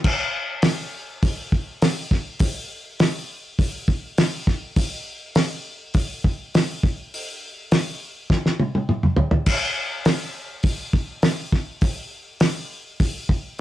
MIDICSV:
0, 0, Header, 1, 2, 480
1, 0, Start_track
1, 0, Tempo, 588813
1, 40, Time_signature, 4, 2, 24, 8
1, 11089, End_track
2, 0, Start_track
2, 0, Title_t, "Drums"
2, 33, Note_on_c, 9, 49, 112
2, 36, Note_on_c, 9, 36, 116
2, 115, Note_off_c, 9, 49, 0
2, 118, Note_off_c, 9, 36, 0
2, 508, Note_on_c, 9, 46, 58
2, 513, Note_on_c, 9, 38, 109
2, 589, Note_off_c, 9, 46, 0
2, 594, Note_off_c, 9, 38, 0
2, 1000, Note_on_c, 9, 36, 111
2, 1000, Note_on_c, 9, 46, 61
2, 1081, Note_off_c, 9, 46, 0
2, 1082, Note_off_c, 9, 36, 0
2, 1241, Note_on_c, 9, 36, 79
2, 1322, Note_off_c, 9, 36, 0
2, 1482, Note_on_c, 9, 46, 61
2, 1487, Note_on_c, 9, 38, 105
2, 1564, Note_off_c, 9, 46, 0
2, 1568, Note_off_c, 9, 38, 0
2, 1721, Note_on_c, 9, 36, 86
2, 1723, Note_on_c, 9, 38, 32
2, 1802, Note_off_c, 9, 36, 0
2, 1805, Note_off_c, 9, 38, 0
2, 1952, Note_on_c, 9, 46, 68
2, 1959, Note_on_c, 9, 36, 126
2, 2034, Note_off_c, 9, 46, 0
2, 2041, Note_off_c, 9, 36, 0
2, 2442, Note_on_c, 9, 46, 56
2, 2447, Note_on_c, 9, 38, 116
2, 2523, Note_off_c, 9, 46, 0
2, 2528, Note_off_c, 9, 38, 0
2, 2925, Note_on_c, 9, 36, 110
2, 2928, Note_on_c, 9, 46, 66
2, 3006, Note_off_c, 9, 36, 0
2, 3009, Note_off_c, 9, 46, 0
2, 3162, Note_on_c, 9, 36, 82
2, 3244, Note_off_c, 9, 36, 0
2, 3405, Note_on_c, 9, 46, 62
2, 3410, Note_on_c, 9, 38, 104
2, 3487, Note_off_c, 9, 46, 0
2, 3492, Note_off_c, 9, 38, 0
2, 3645, Note_on_c, 9, 36, 82
2, 3649, Note_on_c, 9, 38, 35
2, 3727, Note_off_c, 9, 36, 0
2, 3730, Note_off_c, 9, 38, 0
2, 3883, Note_on_c, 9, 46, 64
2, 3884, Note_on_c, 9, 36, 106
2, 3964, Note_off_c, 9, 46, 0
2, 3966, Note_off_c, 9, 36, 0
2, 4363, Note_on_c, 9, 46, 56
2, 4368, Note_on_c, 9, 38, 100
2, 4445, Note_off_c, 9, 46, 0
2, 4450, Note_off_c, 9, 38, 0
2, 4842, Note_on_c, 9, 46, 55
2, 4848, Note_on_c, 9, 36, 112
2, 4923, Note_off_c, 9, 46, 0
2, 4930, Note_off_c, 9, 36, 0
2, 5090, Note_on_c, 9, 36, 83
2, 5171, Note_off_c, 9, 36, 0
2, 5336, Note_on_c, 9, 46, 56
2, 5340, Note_on_c, 9, 38, 108
2, 5417, Note_off_c, 9, 46, 0
2, 5422, Note_off_c, 9, 38, 0
2, 5571, Note_on_c, 9, 36, 99
2, 5653, Note_off_c, 9, 36, 0
2, 5820, Note_on_c, 9, 46, 67
2, 5902, Note_off_c, 9, 46, 0
2, 6289, Note_on_c, 9, 46, 62
2, 6294, Note_on_c, 9, 38, 105
2, 6371, Note_off_c, 9, 46, 0
2, 6375, Note_off_c, 9, 38, 0
2, 6766, Note_on_c, 9, 36, 109
2, 6772, Note_on_c, 9, 38, 64
2, 6847, Note_off_c, 9, 36, 0
2, 6853, Note_off_c, 9, 38, 0
2, 6895, Note_on_c, 9, 38, 59
2, 6976, Note_off_c, 9, 38, 0
2, 7007, Note_on_c, 9, 48, 81
2, 7088, Note_off_c, 9, 48, 0
2, 7133, Note_on_c, 9, 48, 66
2, 7214, Note_off_c, 9, 48, 0
2, 7246, Note_on_c, 9, 47, 89
2, 7328, Note_off_c, 9, 47, 0
2, 7363, Note_on_c, 9, 45, 74
2, 7445, Note_off_c, 9, 45, 0
2, 7471, Note_on_c, 9, 43, 91
2, 7553, Note_off_c, 9, 43, 0
2, 7591, Note_on_c, 9, 43, 89
2, 7672, Note_off_c, 9, 43, 0
2, 7714, Note_on_c, 9, 46, 61
2, 7714, Note_on_c, 9, 49, 104
2, 7717, Note_on_c, 9, 36, 111
2, 7795, Note_off_c, 9, 46, 0
2, 7795, Note_off_c, 9, 49, 0
2, 7798, Note_off_c, 9, 36, 0
2, 8195, Note_on_c, 9, 46, 58
2, 8200, Note_on_c, 9, 38, 111
2, 8277, Note_off_c, 9, 46, 0
2, 8282, Note_off_c, 9, 38, 0
2, 8665, Note_on_c, 9, 46, 61
2, 8672, Note_on_c, 9, 36, 113
2, 8746, Note_off_c, 9, 46, 0
2, 8754, Note_off_c, 9, 36, 0
2, 8913, Note_on_c, 9, 36, 84
2, 8995, Note_off_c, 9, 36, 0
2, 9150, Note_on_c, 9, 46, 56
2, 9155, Note_on_c, 9, 38, 108
2, 9231, Note_off_c, 9, 46, 0
2, 9236, Note_off_c, 9, 38, 0
2, 9395, Note_on_c, 9, 36, 84
2, 9400, Note_on_c, 9, 38, 31
2, 9476, Note_off_c, 9, 36, 0
2, 9482, Note_off_c, 9, 38, 0
2, 9630, Note_on_c, 9, 46, 61
2, 9635, Note_on_c, 9, 36, 112
2, 9711, Note_off_c, 9, 46, 0
2, 9717, Note_off_c, 9, 36, 0
2, 10111, Note_on_c, 9, 46, 60
2, 10116, Note_on_c, 9, 38, 114
2, 10192, Note_off_c, 9, 46, 0
2, 10197, Note_off_c, 9, 38, 0
2, 10596, Note_on_c, 9, 46, 59
2, 10598, Note_on_c, 9, 36, 112
2, 10678, Note_off_c, 9, 46, 0
2, 10679, Note_off_c, 9, 36, 0
2, 10835, Note_on_c, 9, 36, 93
2, 10917, Note_off_c, 9, 36, 0
2, 11089, End_track
0, 0, End_of_file